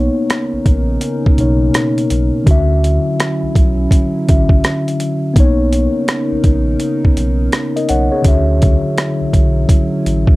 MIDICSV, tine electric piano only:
0, 0, Header, 1, 2, 480
1, 0, Start_track
1, 0, Tempo, 722892
1, 1639, Time_signature, 4, 2, 24, 8
1, 6879, End_track
2, 0, Start_track
2, 0, Title_t, "Tine electric piano"
2, 0, Program_c, 0, 4
2, 0, Control_c, 0, 64, 127
2, 0, Note_on_c, 0, 58, 67
2, 0, Note_on_c, 0, 59, 76
2, 0, Note_on_c, 0, 63, 72
2, 0, Note_on_c, 0, 73, 89
2, 886, Note_off_c, 0, 59, 0
2, 892, Note_off_c, 0, 58, 0
2, 900, Note_off_c, 0, 63, 0
2, 907, Note_off_c, 0, 73, 0
2, 912, Note_on_c, 0, 47, 58
2, 920, Note_on_c, 0, 58, 48
2, 926, Note_on_c, 0, 63, 46
2, 933, Note_on_c, 0, 73, 58
2, 1621, Note_on_c, 0, 50, 77
2, 1635, Note_off_c, 0, 47, 0
2, 1635, Note_on_c, 0, 61, 69
2, 1640, Note_off_c, 0, 58, 0
2, 1643, Note_off_c, 0, 63, 0
2, 1646, Note_off_c, 0, 73, 0
2, 1648, Control_c, 0, 64, 0
2, 1649, Note_on_c, 0, 66, 76
2, 1665, Note_on_c, 0, 76, 88
2, 1758, Control_c, 0, 64, 127
2, 2806, Note_off_c, 0, 50, 0
2, 2813, Note_off_c, 0, 61, 0
2, 2820, Note_off_c, 0, 66, 0
2, 2828, Note_off_c, 0, 76, 0
2, 2833, Note_on_c, 0, 50, 50
2, 2841, Note_on_c, 0, 61, 47
2, 2847, Note_on_c, 0, 66, 47
2, 2854, Note_on_c, 0, 76, 59
2, 3544, Note_on_c, 0, 59, 81
2, 3556, Note_off_c, 0, 50, 0
2, 3557, Note_on_c, 0, 58, 64
2, 3560, Note_off_c, 0, 61, 0
2, 3563, Note_off_c, 0, 66, 0
2, 3567, Note_off_c, 0, 76, 0
2, 3567, Control_c, 0, 64, 0
2, 3572, Note_on_c, 0, 63, 72
2, 3586, Note_on_c, 0, 73, 93
2, 3680, Control_c, 0, 64, 127
2, 4749, Note_off_c, 0, 73, 0
2, 5154, Note_on_c, 0, 75, 65
2, 5158, Note_on_c, 0, 70, 53
2, 5236, Note_off_c, 0, 75, 0
2, 5238, Note_off_c, 0, 70, 0
2, 5241, Note_on_c, 0, 78, 73
2, 5245, Note_on_c, 0, 73, 63
2, 5381, Note_off_c, 0, 73, 0
2, 5384, Note_off_c, 0, 78, 0
2, 5389, Note_on_c, 0, 73, 69
2, 5393, Note_on_c, 0, 68, 60
2, 5445, Note_off_c, 0, 59, 0
2, 5451, Note_off_c, 0, 58, 0
2, 5457, Note_on_c, 0, 50, 78
2, 5459, Note_off_c, 0, 63, 0
2, 5471, Note_on_c, 0, 61, 76
2, 5484, Note_on_c, 0, 66, 70
2, 5486, Control_c, 0, 64, 0
2, 5499, Note_on_c, 0, 76, 86
2, 5594, Control_c, 0, 64, 127
2, 5618, Note_off_c, 0, 73, 0
2, 5620, Note_off_c, 0, 68, 0
2, 6879, Note_off_c, 0, 50, 0
2, 6879, Note_off_c, 0, 61, 0
2, 6879, Note_off_c, 0, 66, 0
2, 6879, Note_off_c, 0, 76, 0
2, 6879, End_track
0, 0, End_of_file